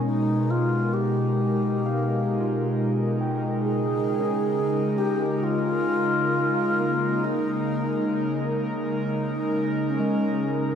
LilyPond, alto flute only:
\new Staff \with { instrumentName = "Alto flute" } { \time 4/4 \key ees \mixolydian \tempo 4 = 67 ees'8 f'8 g'2~ g'8 r8 | aes'4. g'8 f'2 | ees'4. r8 ees'4 des'8. r16 | }